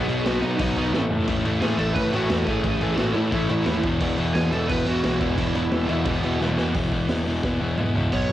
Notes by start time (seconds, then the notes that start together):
Already playing: G#4
0.08 B1 B2 F#3 B3 D#4, crash
0.23 B1 B2 F#3 F#4, snare, crash
0.27 B3 D#4
0.40 B2 F#3 B3 D#4, crash
0.57 B1 B2 F#3 B3 D#4, kick, crash
0.76 B1 B2 F#3 B3 D#4, crash
0.93 A1 A2 E3 A3 E4, snare
1.10 A2 E3 A3 E4, floor tom
1.26 A1 A2 E3 A3 C#4 E4, kick, crash
1.44 A1 A2 E3 A3 C#4 E4, crash
1.61 A2 E3 A3 C#4 E4 G#4, snare, crash
1.78 A1 A2 E3 A3 C#4 E4 A4, crash
1.95 A1 A2 E3 A3 C#4 E4 B4, kick, crash
2.11 A1 A2 E3 A3 C#4 E4 F#4, crash
2.30 E2 A2 E3 A3 C#4 E4, snare, crash
2.44 A1 A2 E3 A3 C#4 E4 G#4, kick, crash
2.64 A1 A2 E3 A3 C#4 E4, kick, crash
2.81 A1 A2 E3 A3 C#4 E4, crash
2.95 A1 A2 E3 F#4, snare, crash
3.00 A3 C#4 E4
3.13 A2 E3 A3 C#4 E4, crash
3.31 A1 A2 E3 A3 C#4 E4, kick, crash
3.49 A1 A2 E3 A3 C#4 E4, crash
3.66 D#2 A2 E3 A3 C#4 E4, snare, crash
3.83 E1 E2 B2 E3 G#3 B3 E4, kick, crash
4.00 E1 E2 B2 E3 G#3 B3 E4, kick, crash
4.18 E1 E2 B2 E3 G#3 B3 E4, crash
4.34 E2 B2 E3 G#3 B3 E4 G#4, snare, crash
4.51 E1 E2 B2 E3 G#3 B3 E4 A4, crash
4.69 E1 E2 B2 E3 G#3 B3 E4 B4, kick, crash
4.86 E1 E2 B2 E3 G#3 B3 E4 F#4, crash
5.03 B1 E2 B2 E3 G#3 B3 E4, snare, crash
5.20 E1 E2 B2 E3 G#3 B3 E4, kick, crash
5.37 E1 E2 B2 E3 G#3 B3 E4, kick, crash
5.55 E1 E2 B2 E3 G#3 B3 E4, crash
5.71 E1 E2 B2 E3 G#3 B3 E4, snare, crash
5.88 E2 B2 E3 G#3 B3 E4, crash
6.05 E1 E2 B2 E3 G#3 B3 E4, kick, crash
6.22 E1 E2 B2 E3 G#3 B3 E4, crash
6.40 E1 E2 B2 E3 G#3 B3 E4, snare
6.57 E2 B2 E3 G#3 B3 E4, snare
6.73 E1 E2 B2 E3 G#3 B3 E4, kick, open hi-hat
6.91 E2 B2 E3 G#3 B3 E4, kick
7.07 E1 E2 B2 E3 G#3 B3 E4, snare, open hi-hat
7.25 E2 B2 E3 G#3 B3 E4
7.43 E1 E2 B2 E3 G#3 B3 E4, kick, snare
7.60 E1 E2 B2 E3 G#3 B3 E4
7.77 E1 E2 B2 E3 G#3 B3 E4, mid tom
7.95 C#2 E2 B2 E3 G#3 B3 E4, floor tom
8.11 B1 B2 F#3 B3 C#5, kick, crash
8.29 B2 F#3